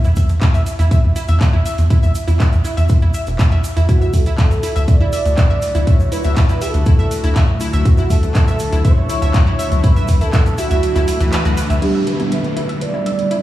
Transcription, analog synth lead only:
3.89 F#4
4.13 A4
4.38 A4
4.88 D5
5.87 C#5
6.12 B4
6.36 B4
6.61 A4
7.85 F#4
8.10 A4
8.35 A4
8.85 C#5
9.84 B4
10.21 A4
10.33 A4
10.58 F#4
11.82 G4
12.07 B4
12.32 B4
12.81 D5

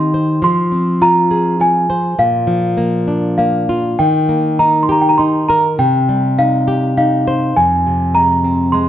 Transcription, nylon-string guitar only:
Already playing: D#3 C4 D#4 G4
0.14 C5
0.42 F3
0.72 C4
1.02 F4
1.31 G#4
1.60 F4
1.90 C5
2.19 A#2
2.47 F3
2.77 A#3
3.08 D4
3.38 A#3
3.69 F4
3.99 D#3
4.29 A#3
4.59 D#4
4.89 G4
5.19 D#4
5.50 A#4
5.79 C3
6.09 G3
6.38 D#4
6.68 G4
6.97 D#4
7.28 C5
7.57 F2
7.87 C3
8.14 G#3
8.44 C4
8.74 G#3

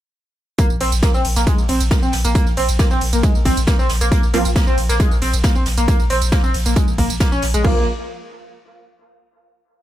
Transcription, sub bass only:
0.70 A#1
0.81 A#1
0.92 A#1
1.14 A#1
1.25 A#1
1.36 A#1
1.58 A#1
1.69 A#1
1.81 A#1
2.03 A#1
2.13 A#1
2.25 A#1
2.47 A#1
2.57 A#1
2.69 A#1
2.91 A#1
3.01 A#1
3.13 A#1
3.35 A#1
3.45 A#1
3.57 A#1
3.79 A#1
3.89 A#1
4.01 A#1
4.23 A#1
4.34 A#1
4.45 A#1
4.67 A#1
4.78 A#1
4.89 A#1
5.11 A#1
5.22 A#1
5.33 A#1
5.55 A#1
5.66 A#1
5.78 A#1
6.00 A#1
6.10 A#1
6.22 A#1
6.44 A#1
6.54 A#1
6.66 A#1
6.88 A#1
6.98 A#1
7.10 A#1
7.32 A#1
7.43 A#1
7.54 A#1
7.65 A#1

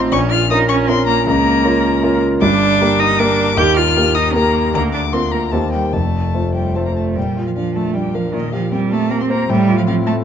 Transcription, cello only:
Already playing: C4
0.13 C#4
0.32 F4
0.51 D#4
0.70 C#4
0.88 C4
1.07 A#3
1.26 A#3
2.41 D4
2.99 D#4
3.19 D4
3.57 G4
3.77 F4
4.15 D#4
4.35 A#3
4.74 A#3
4.94 D4
5.14 C4
5.33 A#3
5.53 A3
5.74 G3
5.94 A3
6.55 G3
6.76 A3
6.87 A#3
6.96 A3
7.16 G3
7.47 F3
7.56 F3
7.76 A3
7.95 G3
8.15 F3
8.34 D#3
8.53 F3
8.73 G3
8.93 A3
9.12 A#3
9.22 C4
9.30 A#3
9.49 G3
9.79 F3
9.88 F3
10.07 A3

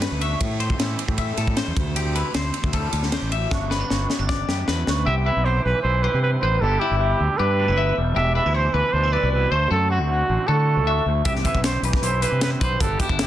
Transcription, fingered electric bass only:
0.12 D2
0.41 A2
0.79 A2
1.09 A2
1.37 A2
1.67 E2
1.77 D2
2.35 D2
2.64 D2
2.93 D2
3.22 A1
3.52 G1
3.91 G1
4.19 G1
4.48 F#2
4.68 E2
4.87 D2
5.07 C2
5.36 B1
5.65 B1
5.84 B1
6.14 C3
6.43 A1
6.62 G1
6.91 G1
7.20 D2
7.39 G2
7.69 G1
7.98 E1
8.16 E1
8.46 D2
8.74 D2
8.93 D2
9.23 C2
9.51 D2
9.71 F#2
9.99 D2
10.29 A1
10.48 D3
10.77 D2
11.06 D2
11.26 C2
11.55 B1
11.82 B1
12.02 B1
12.32 C3
12.61 B1
12.81 G1
13.10 G1

